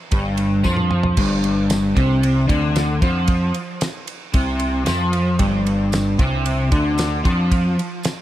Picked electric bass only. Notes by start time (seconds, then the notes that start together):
0.12 G1
0.65 F2
1.17 G1
1.97 C2
2.49 D2
3.02 F2
4.34 C2
4.89 F2
5.39 G1
6.19 C2
6.72 D2
7.25 F2